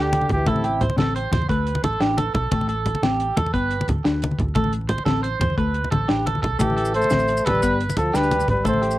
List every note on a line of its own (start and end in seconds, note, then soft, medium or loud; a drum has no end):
0.00 0.23 D2 medium
0.00 0.32 D3 medium
0.00 0.17 D4 medium
0.00 0.29 G4 medium
0.00 0.31 G4 medium
0.13 closed hi-hat soft
0.13 muted conga medium
0.21 high conga medium
0.29 0.44 D2 medium
0.29 0.50 G4 medium
0.29 kick medium
0.29 closed hi-hat soft
0.29 low conga medium
0.34 0.53 E3 medium
0.38 low conga soft
0.46 0.89 A1 medium
0.46 0.68 A3 medium
0.46 0.86 E4 medium
0.46 0.63 A4 medium
0.46 kick medium
0.46 closed hi-hat medium
0.46 muted conga medium
0.51 0.87 C3 medium
0.56 high conga medium
0.64 0.80 G4 medium
0.64 closed hi-hat soft
0.81 0.97 C5 medium
0.81 closed hi-hat soft
0.81 low conga medium
0.90 muted conga medium
0.97 1.25 A1 medium
0.97 1.18 C4 medium
0.97 1.14 A4 medium
0.97 snare medium
0.97 closed hi-hat medium
0.97 high conga medium
1.16 1.31 C5 medium
1.16 closed hi-hat medium
1.31 1.46 E2 medium
1.31 1.49 C5 medium
1.31 snare soft
1.31 closed hi-hat soft
1.31 muted conga medium
1.31 low conga medium
1.42 high conga medium
1.49 1.77 D2 loud
1.49 1.71 A3 medium
1.49 1.82 B4 medium
1.49 kick medium
1.49 closed hi-hat medium
1.67 closed hi-hat soft
1.75 muted conga medium
1.82 1.97 A1 medium
1.82 2.00 A4 medium
1.82 closed hi-hat soft
1.82 high conga medium
1.82 low conga medium
1.93 low conga soft
2.00 2.28 A1 medium
2.00 2.23 D4 medium
2.00 2.17 G4 medium
2.00 snare medium
2.00 closed hi-hat medium
2.17 2.33 A4 medium
2.17 closed hi-hat soft
2.17 muted conga medium
2.34 2.48 B1 medium
2.34 2.51 A4 medium
2.34 kick medium
2.34 closed hi-hat soft
2.34 low conga medium
2.44 low conga soft
2.51 2.93 A1 medium
2.51 2.74 A3 medium
2.51 2.68 A4 medium
2.51 kick medium
2.51 closed hi-hat medium
2.51 muted conga loud
2.61 high conga medium
2.69 3.01 A4 medium
2.69 closed hi-hat soft
2.86 closed hi-hat soft
2.86 low conga medium
2.95 muted conga medium
3.02 3.30 A1 medium
3.02 3.25 C4 medium
3.02 3.35 G4 medium
3.02 snare medium
3.02 closed hi-hat medium
3.02 high conga medium
3.20 closed hi-hat soft
3.37 3.51 E2 medium
3.37 3.53 A4 medium
3.37 closed hi-hat soft
3.37 muted conga medium
3.37 low conga loud
3.46 high conga medium
3.54 3.82 G1 loud
3.54 3.75 B3 medium
3.54 3.86 B4 medium
3.54 kick medium
3.54 closed hi-hat medium
3.71 closed hi-hat soft
3.81 muted conga medium
3.88 4.02 D2 medium
3.88 closed hi-hat soft
3.88 high conga medium
3.88 low conga medium
3.98 low conga soft
4.04 4.33 D2 medium
4.04 4.26 D4 medium
4.04 muted clean electric guitar stroke medium
4.04 snare medium
4.04 closed hi-hat medium
4.22 closed hi-hat soft
4.22 muted conga medium
4.31 high conga medium
4.39 4.53 D2 medium
4.39 kick medium
4.39 closed hi-hat soft
4.39 low conga medium
4.49 low conga soft
4.55 4.98 A1 medium
4.55 4.78 A3 medium
4.55 4.72 A4 medium
4.55 kick medium
4.55 closed hi-hat medium
4.55 muted conga medium
4.55 low conga soft
4.64 high conga medium
4.64 low conga soft
4.73 closed hi-hat soft
4.81 low conga soft
4.89 5.05 C5 medium
4.89 closed hi-hat soft
4.89 low conga medium
4.98 muted conga medium
5.05 5.34 A1 medium
5.05 5.28 C4 medium
5.05 5.22 A4 medium
5.05 snare medium
5.05 closed hi-hat medium
5.05 high conga medium
5.23 5.39 C5 medium
5.23 closed hi-hat soft
5.40 5.54 E2 medium
5.40 5.57 C5 medium
5.40 closed hi-hat soft
5.40 muted conga medium
5.40 low conga medium
5.50 high conga medium
5.50 low conga soft
5.58 5.86 D2 medium
5.58 5.79 A3 medium
5.58 5.90 B4 medium
5.58 kick medium
5.58 closed hi-hat medium
5.58 low conga soft
5.74 closed hi-hat soft
5.74 low conga soft
5.84 muted conga medium
5.91 6.06 A1 medium
5.91 6.08 A4 medium
5.91 closed hi-hat soft
5.91 high conga medium
5.91 low conga medium
6.08 6.37 A1 medium
6.08 6.30 D4 medium
6.08 6.25 G4 medium
6.08 snare medium
6.08 closed hi-hat medium
6.26 6.41 A4 medium
6.26 closed hi-hat soft
6.26 muted conga medium
6.35 high conga medium
6.42 6.57 B1 medium
6.42 6.58 A4 medium
6.42 kick medium
6.42 closed hi-hat soft
6.42 low conga medium
6.59 7.02 A1 medium
6.59 6.93 E3 medium
6.59 6.81 A3 medium
6.59 6.92 G4 medium
6.59 6.75 A4 medium
6.59 kick medium
6.59 closed hi-hat medium
6.59 muted conga medium
6.59 maracas medium
6.70 high conga medium
6.76 7.09 A4 medium
6.76 closed hi-hat soft
6.85 maracas medium
6.94 7.47 A3 medium
6.94 7.46 C5 loud
6.94 closed hi-hat soft
7.02 muted conga medium
7.02 maracas soft
7.10 7.40 A1 medium
7.10 7.32 C4 medium
7.10 muted clean electric guitar stroke medium
7.10 snare medium
7.10 closed hi-hat medium
7.10 high conga medium
7.10 maracas medium
7.19 maracas soft
7.28 closed hi-hat medium
7.28 maracas soft
7.37 maracas medium
7.45 7.60 A1 medium
7.45 7.80 G3 medium
7.45 7.62 A4 medium
7.45 7.79 B4 loud
7.45 snare soft
7.45 closed hi-hat medium
7.45 muted conga medium
7.45 low conga medium
7.55 high conga medium
7.62 7.90 G1 loud
7.62 7.84 B3 medium
7.62 7.95 B4 medium
7.62 kick medium
7.62 closed hi-hat medium
7.62 maracas medium
7.80 closed hi-hat soft
7.89 muted conga medium
7.89 maracas medium
7.97 8.11 D2 medium
7.97 8.17 F3 medium
7.97 8.17 A4 medium
7.97 closed hi-hat soft
7.97 high conga medium
7.97 low conga medium
7.97 maracas soft
8.05 low conga soft
8.13 8.42 D2 medium
8.13 8.49 G3 medium
8.13 8.35 D4 medium
8.13 8.46 G4 medium
8.13 8.49 B4 medium
8.13 snare medium
8.13 closed hi-hat medium
8.13 maracas medium
8.23 maracas soft
8.31 closed hi-hat soft
8.31 muted conga medium
8.31 maracas soft
8.40 high conga medium
8.40 maracas medium
8.48 8.62 G#1 medium
8.48 8.65 G3 medium
8.48 8.65 B4 medium
8.48 kick medium
8.48 closed hi-hat soft
8.48 low conga medium
8.57 low conga soft
8.65 8.99 A1 medium
8.65 8.86 A3 medium
8.65 8.99 A3 medium
8.65 8.81 A4 medium
8.65 8.99 C5 medium
8.65 kick medium
8.65 closed hi-hat medium
8.65 muted conga medium
8.65 maracas medium
8.74 high conga medium
8.82 8.98 G4 medium
8.82 closed hi-hat soft
8.91 maracas medium